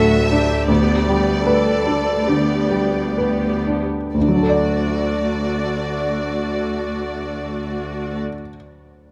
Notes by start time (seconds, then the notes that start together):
Already playing: D2 A2 F#3 A3 D4 F#4 A4 E5
0.31 D4 G4
0.68 D2 B3 D5
1.08 G3 B3
1.45 A3 A4 B4
1.85 G3 D4
2.28 D3 B3 G4
2.71 G3
3.17 B3 G4 B4
3.67 D4
4.14 D2 A3 F#4 D5
4.21 D3
4.28 F#3
4.35 D4
4.42 A4
4.49 D5